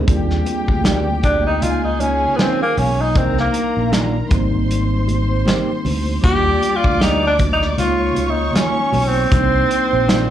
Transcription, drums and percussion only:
0.08 kick, closed hi-hat
0.30 snare
0.46 closed hi-hat, muted conga
0.68 kick
0.84 snare, closed hi-hat, muted conga, high conga
1.23 kick, closed hi-hat, high conga, low conga
1.61 closed hi-hat, muted conga
2.00 closed hi-hat, high conga
2.39 snare, closed hi-hat, high conga
2.77 open hi-hat, high conga, low conga
3.15 kick, closed hi-hat, muted conga
3.38 snare
3.54 closed hi-hat, muted conga
3.92 snare, closed hi-hat, high conga
4.31 kick, closed hi-hat, muted conga, high conga, low conga
4.71 closed hi-hat
5.08 closed hi-hat, muted conga, high conga
5.46 snare, closed hi-hat, muted conga, high conga
5.85 open hi-hat, high conga, low conga
6.24 kick, closed hi-hat
6.62 closed hi-hat, muted conga
6.84 kick
7.00 snare, closed hi-hat, high conga
7.39 kick, closed hi-hat, muted conga, high conga, low conga
7.62 snare
7.78 closed hi-hat
8.15 closed hi-hat, high conga
8.53 snare, closed hi-hat, muted conga, high conga
8.93 open hi-hat, muted conga, high conga, low conga
9.32 kick, closed hi-hat
9.71 closed hi-hat
10.08 snare, closed hi-hat, muted conga, high conga

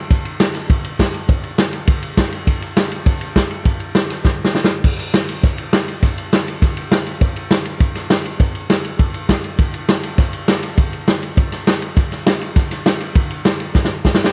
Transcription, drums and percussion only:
0.11 kick, ride
0.25 ride
0.40 snare, ride
0.55 snare, ride
0.70 kick, ride
0.84 ride
0.99 kick, snare, ride
1.14 ride
1.29 kick, ride
1.44 ride
1.58 snare, ride
1.73 ride
1.87 kick, ride
2.03 ride
2.17 kick, snare, ride
2.32 ride
2.47 kick, ride
2.62 ride
2.77 snare, ride
2.92 ride
3.06 kick, ride
3.21 ride
3.36 kick, snare, ride
3.51 ride
3.65 kick, ride
3.80 ride
3.95 snare, ride
4.10 snare, ride
4.24 kick, snare
4.44 snare
4.55 snare
4.64 snare
4.84 kick, crash
4.99 ride
5.14 snare, ride
5.29 ride
5.43 kick, snare, ride
5.58 ride
5.73 snare, ride
5.88 ride
6.02 kick, snare, ride
6.18 ride
6.33 snare, ride
6.48 ride
6.62 kick, snare, ride
6.77 ride
6.91 snare, ride
7.06 ride
7.21 kick, ride
7.36 ride
7.51 snare, ride
7.65 ride
7.80 kick, ride
7.95 snare, ride
8.10 snare, ride
8.25 ride
8.40 kick, ride
8.55 ride
8.70 snare, ride
8.84 ride
8.99 kick, ride
9.14 ride
9.29 kick, snare, ride
9.44 ride
9.58 kick, ride
9.74 ride
9.89 snare, ride
10.03 ride
10.18 kick, snare, ride
10.33 ride
10.48 snare, ride
10.63 ride
10.78 kick, ride
10.93 ride
11.08 snare, ride
11.23 ride
11.37 kick, ride
11.52 snare, ride
11.67 snare, ride
11.82 ride
11.97 kick, snare, ride
12.12 snare, ride
12.27 snare, ride
12.41 ride
12.56 kick, snare, ride
12.71 snare, ride
12.86 snare, ride
13.00 ride
13.15 kick, ride
13.30 ride
13.45 snare, ride
13.60 ride
13.74 kick, snare
13.85 snare
14.05 kick, snare
14.14 snare
14.24 snare

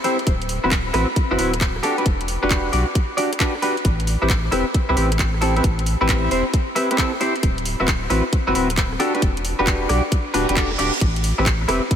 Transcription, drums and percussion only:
0.04 open hi-hat
0.19 closed hi-hat
0.27 kick, closed hi-hat
0.42 closed hi-hat
0.49 open hi-hat
0.71 kick, clap, closed hi-hat
0.94 cross-stick, open hi-hat
1.16 kick, closed hi-hat
1.39 open hi-hat
1.54 cross-stick, closed hi-hat
1.61 kick, clap, closed hi-hat
1.76 cross-stick
1.83 open hi-hat
1.98 closed hi-hat
2.06 kick, closed hi-hat
2.21 closed hi-hat
2.28 open hi-hat
2.51 kick, clap, closed hi-hat
2.73 open hi-hat
2.95 kick, closed hi-hat
3.18 open hi-hat
3.33 cross-stick, closed hi-hat
3.40 kick, clap, closed hi-hat
3.55 cross-stick
3.62 open hi-hat
3.77 closed hi-hat
3.85 kick, closed hi-hat
4.00 closed hi-hat
4.07 open hi-hat
4.30 kick, clap, closed hi-hat
4.52 cross-stick, open hi-hat
4.74 kick, closed hi-hat
4.97 open hi-hat
5.12 cross-stick, closed hi-hat
5.19 kick, clap, closed hi-hat
5.34 cross-stick
5.42 open hi-hat
5.57 closed hi-hat
5.64 kick, closed hi-hat
5.79 closed hi-hat
5.86 open hi-hat
6.09 kick, clap, closed hi-hat
6.31 open hi-hat
6.54 kick, closed hi-hat
6.76 open hi-hat
6.91 cross-stick, closed hi-hat
6.98 kick, clap, closed hi-hat
7.13 cross-stick
7.21 open hi-hat
7.36 closed hi-hat
7.43 kick, closed hi-hat
7.58 closed hi-hat
7.65 open hi-hat
7.88 kick, clap, closed hi-hat
8.10 open hi-hat
8.33 kick, closed hi-hat
8.55 open hi-hat
8.70 cross-stick, closed hi-hat
8.77 kick, clap, closed hi-hat
8.92 cross-stick
9.00 open hi-hat
9.15 closed hi-hat
9.22 kick, closed hi-hat
9.37 closed hi-hat
9.45 open hi-hat
9.67 kick, clap, closed hi-hat
9.89 cross-stick, open hi-hat
10.12 kick, closed hi-hat
10.34 open hi-hat
10.49 cross-stick, closed hi-hat
10.57 kick, clap, closed hi-hat
10.71 cross-stick
10.79 open hi-hat
10.94 closed hi-hat
11.01 kick, closed hi-hat
11.16 closed hi-hat
11.24 open hi-hat
11.46 kick, clap, closed hi-hat
11.69 cross-stick, open hi-hat
11.91 kick, closed hi-hat

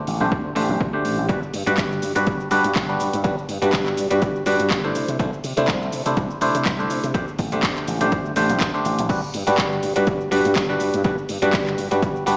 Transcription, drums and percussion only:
0.07 open hi-hat
0.32 kick
0.56 open hi-hat
0.81 kick
1.05 open hi-hat
1.29 kick, closed hi-hat, cabasa
1.43 cabasa
1.54 open hi-hat, cabasa
1.67 closed hi-hat, cabasa
1.77 kick, clap, closed hi-hat, cabasa
1.92 cabasa
2.02 open hi-hat, cabasa
2.16 closed hi-hat, cabasa
2.27 kick, closed hi-hat, cabasa
2.40 cabasa
2.51 open hi-hat, cabasa
2.64 closed hi-hat, cabasa
2.75 kick, clap, closed hi-hat, cabasa
2.89 cabasa
3.00 open hi-hat, cabasa
3.13 closed hi-hat, cabasa
3.24 kick, closed hi-hat, cabasa
3.38 cabasa
3.49 open hi-hat, cabasa
3.62 closed hi-hat, cabasa
3.73 kick, clap, closed hi-hat, cabasa
3.86 clap, cabasa
3.97 open hi-hat, cabasa
4.11 closed hi-hat, cabasa
4.22 kick, closed hi-hat, cabasa
4.36 cabasa
4.46 open hi-hat, cabasa
4.60 closed hi-hat, cabasa
4.70 kick, clap, closed hi-hat, cabasa
4.84 cabasa
4.95 open hi-hat, cabasa
5.08 closed hi-hat, cabasa
5.20 kick, closed hi-hat, cabasa
5.33 cabasa
5.44 open hi-hat, cabasa
5.57 closed hi-hat, cabasa
5.68 kick, clap, closed hi-hat, cabasa
5.82 cabasa
5.92 open hi-hat, cabasa
6.06 closed hi-hat, cabasa
6.17 kick, closed hi-hat, cabasa
6.30 cabasa
6.41 open hi-hat, cabasa
6.55 closed hi-hat, cabasa
6.65 kick, clap, closed hi-hat, cabasa
6.79 cabasa
6.90 open hi-hat, cabasa
7.04 closed hi-hat, cabasa
7.14 kick, closed hi-hat, cabasa
7.28 cabasa
7.39 kick, open hi-hat, cabasa
7.52 closed hi-hat, cabasa
7.63 kick, clap, closed hi-hat, cabasa
7.76 clap, cabasa
7.88 open hi-hat, cabasa
8.01 closed hi-hat, cabasa
8.12 kick, closed hi-hat, cabasa
8.25 cabasa
8.36 open hi-hat, cabasa
8.50 closed hi-hat, cabasa
8.60 kick, clap, closed hi-hat, cabasa
8.74 cabasa
8.85 open hi-hat, cabasa
8.99 closed hi-hat, cabasa
9.10 kick, closed hi-hat, crash, cabasa
9.23 cabasa
9.34 open hi-hat, cabasa
9.47 closed hi-hat, cabasa
9.58 kick, clap, closed hi-hat, cabasa
9.72 cabasa
9.83 open hi-hat, cabasa
9.96 closed hi-hat, cabasa
10.07 kick, closed hi-hat, cabasa
10.21 cabasa
10.32 open hi-hat, cabasa
10.45 closed hi-hat, cabasa
10.56 kick, clap, closed hi-hat, cabasa
10.70 cabasa
10.80 open hi-hat, cabasa
10.94 closed hi-hat, cabasa
11.04 kick, closed hi-hat, cabasa
11.18 cabasa
11.29 open hi-hat, cabasa
11.42 closed hi-hat, cabasa
11.53 kick, clap, closed hi-hat, cabasa
11.67 clap, cabasa
11.78 open hi-hat, cabasa
11.91 closed hi-hat, cabasa
12.02 kick, closed hi-hat, cabasa
12.16 cabasa
12.27 open hi-hat, cabasa

